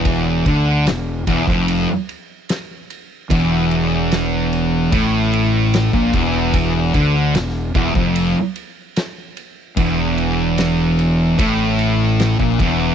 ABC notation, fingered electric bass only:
X:1
M:4/4
L:1/16
Q:1/4=74
K:Ador
V:1 name="Fingered electric bass" clef=bass
E,,,2 D,,2 E,,,2 E,,, =F,,,2 z6 z | E,,,8 A,,,4- A,,, ^A,,, E,,,2- | E,,,2 D,,2 E,,,2 E,,, =F,,,2 z6 z | E,,,8 A,,,4- A,,, ^A,,, E,,,2 |]